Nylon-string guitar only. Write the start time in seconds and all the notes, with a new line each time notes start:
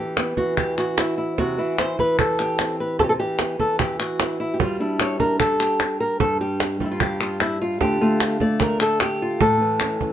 Already playing: E3 G4
0.18 B3
0.37 E3 F#4
0.57 G4
0.78 F#4
0.98 E4
1.18 E4
1.38 C3 F#4
1.58 E3 E4
1.79 C5
1.99 E3 B4
2.20 A4
2.40 G4
2.60 C4
2.80 B4
2.99 C3 A4
3.04 G4
3.09 A4
3.19 E3 G4
3.40 B3
3.60 E3 A4
3.80 G4
4.00 F#4
4.19 E4
4.40 E4
4.54 G4
4.60 G3 F4
4.80 D4 E4
4.99 C#5
5.20 D4 A#4
5.40 A4
5.60 G4
6.00 A#4
6.20 G2 A4
6.40 G3 G4
6.81 G3 F4
6.86 E4
6.91 F4
7.02 G4
7.21 F4
7.41 E4
7.62 F4
7.80 D3 A3 F4 G4
8.01 A3 F4
8.41 A3 D5
8.62 A#4
8.81 A4
9.02 G4
9.22 F4
9.41 A2 A4
9.61 E3
9.81 C#4
10.01 E3